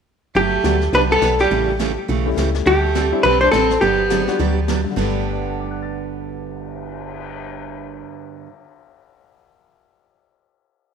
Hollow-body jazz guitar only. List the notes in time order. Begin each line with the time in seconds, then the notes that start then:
0.36 G4
0.95 B4
1.12 A4
1.41 G4
2.67 G4
3.23 B4
3.41 C5
3.52 A4
3.81 G4